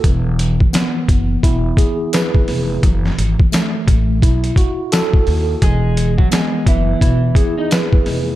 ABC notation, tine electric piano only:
X:1
M:4/4
L:1/8
Q:"Swing 16ths" 1/4=86
K:E
V:1 name="Tine electric piano"
E,2 B,2 E G B2 | E,2 A,2 E F A2 | E,2 B,2 E G B2 |]